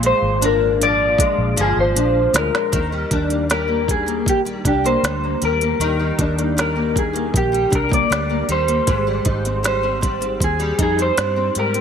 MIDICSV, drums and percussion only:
0, 0, Header, 1, 2, 480
1, 0, Start_track
1, 0, Key_signature, -3, "major"
1, 0, Tempo, 768246
1, 1703, Time_signature, 4, 2, 24, 8
1, 7378, End_track
2, 0, Start_track
2, 0, Title_t, "Drums"
2, 19, Note_on_c, 9, 42, 71
2, 81, Note_off_c, 9, 42, 0
2, 264, Note_on_c, 9, 42, 84
2, 327, Note_off_c, 9, 42, 0
2, 509, Note_on_c, 9, 42, 66
2, 572, Note_off_c, 9, 42, 0
2, 740, Note_on_c, 9, 36, 83
2, 749, Note_on_c, 9, 42, 89
2, 803, Note_off_c, 9, 36, 0
2, 811, Note_off_c, 9, 42, 0
2, 984, Note_on_c, 9, 42, 79
2, 1046, Note_off_c, 9, 42, 0
2, 1227, Note_on_c, 9, 42, 77
2, 1290, Note_off_c, 9, 42, 0
2, 1463, Note_on_c, 9, 42, 78
2, 1473, Note_on_c, 9, 38, 113
2, 1526, Note_off_c, 9, 42, 0
2, 1536, Note_off_c, 9, 38, 0
2, 1592, Note_on_c, 9, 38, 87
2, 1654, Note_off_c, 9, 38, 0
2, 1704, Note_on_c, 9, 36, 107
2, 1705, Note_on_c, 9, 42, 86
2, 1766, Note_off_c, 9, 36, 0
2, 1768, Note_off_c, 9, 42, 0
2, 1943, Note_on_c, 9, 36, 78
2, 1943, Note_on_c, 9, 42, 66
2, 2006, Note_off_c, 9, 36, 0
2, 2006, Note_off_c, 9, 42, 0
2, 2063, Note_on_c, 9, 42, 40
2, 2126, Note_off_c, 9, 42, 0
2, 2186, Note_on_c, 9, 42, 71
2, 2192, Note_on_c, 9, 38, 103
2, 2248, Note_off_c, 9, 42, 0
2, 2255, Note_off_c, 9, 38, 0
2, 2426, Note_on_c, 9, 36, 82
2, 2432, Note_on_c, 9, 42, 63
2, 2488, Note_off_c, 9, 36, 0
2, 2494, Note_off_c, 9, 42, 0
2, 2549, Note_on_c, 9, 42, 41
2, 2611, Note_off_c, 9, 42, 0
2, 2664, Note_on_c, 9, 36, 79
2, 2673, Note_on_c, 9, 42, 83
2, 2726, Note_off_c, 9, 36, 0
2, 2735, Note_off_c, 9, 42, 0
2, 2790, Note_on_c, 9, 42, 30
2, 2852, Note_off_c, 9, 42, 0
2, 2905, Note_on_c, 9, 36, 88
2, 2908, Note_on_c, 9, 42, 69
2, 2967, Note_off_c, 9, 36, 0
2, 2970, Note_off_c, 9, 42, 0
2, 3034, Note_on_c, 9, 42, 50
2, 3097, Note_off_c, 9, 42, 0
2, 3150, Note_on_c, 9, 42, 80
2, 3153, Note_on_c, 9, 38, 104
2, 3213, Note_off_c, 9, 42, 0
2, 3216, Note_off_c, 9, 38, 0
2, 3384, Note_on_c, 9, 42, 72
2, 3447, Note_off_c, 9, 42, 0
2, 3506, Note_on_c, 9, 42, 54
2, 3569, Note_off_c, 9, 42, 0
2, 3629, Note_on_c, 9, 42, 77
2, 3692, Note_off_c, 9, 42, 0
2, 3865, Note_on_c, 9, 36, 74
2, 3866, Note_on_c, 9, 42, 66
2, 3928, Note_off_c, 9, 36, 0
2, 3928, Note_off_c, 9, 42, 0
2, 3989, Note_on_c, 9, 42, 47
2, 4052, Note_off_c, 9, 42, 0
2, 4112, Note_on_c, 9, 42, 76
2, 4118, Note_on_c, 9, 38, 99
2, 4174, Note_off_c, 9, 42, 0
2, 4181, Note_off_c, 9, 38, 0
2, 4347, Note_on_c, 9, 36, 89
2, 4353, Note_on_c, 9, 42, 61
2, 4410, Note_off_c, 9, 36, 0
2, 4416, Note_off_c, 9, 42, 0
2, 4471, Note_on_c, 9, 42, 39
2, 4534, Note_off_c, 9, 42, 0
2, 4585, Note_on_c, 9, 36, 81
2, 4596, Note_on_c, 9, 42, 77
2, 4648, Note_off_c, 9, 36, 0
2, 4659, Note_off_c, 9, 42, 0
2, 4714, Note_on_c, 9, 42, 31
2, 4776, Note_off_c, 9, 42, 0
2, 4825, Note_on_c, 9, 36, 87
2, 4827, Note_on_c, 9, 42, 71
2, 4887, Note_off_c, 9, 36, 0
2, 4890, Note_off_c, 9, 42, 0
2, 4946, Note_on_c, 9, 36, 88
2, 4956, Note_on_c, 9, 42, 50
2, 5008, Note_off_c, 9, 36, 0
2, 5018, Note_off_c, 9, 42, 0
2, 5073, Note_on_c, 9, 42, 73
2, 5076, Note_on_c, 9, 38, 100
2, 5136, Note_off_c, 9, 42, 0
2, 5139, Note_off_c, 9, 38, 0
2, 5303, Note_on_c, 9, 42, 70
2, 5365, Note_off_c, 9, 42, 0
2, 5425, Note_on_c, 9, 42, 55
2, 5488, Note_off_c, 9, 42, 0
2, 5543, Note_on_c, 9, 42, 87
2, 5544, Note_on_c, 9, 36, 111
2, 5606, Note_off_c, 9, 42, 0
2, 5607, Note_off_c, 9, 36, 0
2, 5779, Note_on_c, 9, 42, 65
2, 5783, Note_on_c, 9, 36, 77
2, 5841, Note_off_c, 9, 42, 0
2, 5845, Note_off_c, 9, 36, 0
2, 5905, Note_on_c, 9, 42, 43
2, 5967, Note_off_c, 9, 42, 0
2, 6025, Note_on_c, 9, 42, 78
2, 6032, Note_on_c, 9, 38, 100
2, 6088, Note_off_c, 9, 42, 0
2, 6095, Note_off_c, 9, 38, 0
2, 6264, Note_on_c, 9, 36, 86
2, 6267, Note_on_c, 9, 42, 68
2, 6326, Note_off_c, 9, 36, 0
2, 6330, Note_off_c, 9, 42, 0
2, 6385, Note_on_c, 9, 42, 41
2, 6447, Note_off_c, 9, 42, 0
2, 6501, Note_on_c, 9, 36, 80
2, 6508, Note_on_c, 9, 42, 80
2, 6563, Note_off_c, 9, 36, 0
2, 6570, Note_off_c, 9, 42, 0
2, 6621, Note_on_c, 9, 42, 27
2, 6684, Note_off_c, 9, 42, 0
2, 6739, Note_on_c, 9, 36, 86
2, 6740, Note_on_c, 9, 42, 74
2, 6802, Note_off_c, 9, 36, 0
2, 6802, Note_off_c, 9, 42, 0
2, 6865, Note_on_c, 9, 42, 45
2, 6928, Note_off_c, 9, 42, 0
2, 6982, Note_on_c, 9, 42, 74
2, 6985, Note_on_c, 9, 38, 110
2, 7044, Note_off_c, 9, 42, 0
2, 7047, Note_off_c, 9, 38, 0
2, 7217, Note_on_c, 9, 42, 71
2, 7280, Note_off_c, 9, 42, 0
2, 7337, Note_on_c, 9, 42, 51
2, 7378, Note_off_c, 9, 42, 0
2, 7378, End_track
0, 0, End_of_file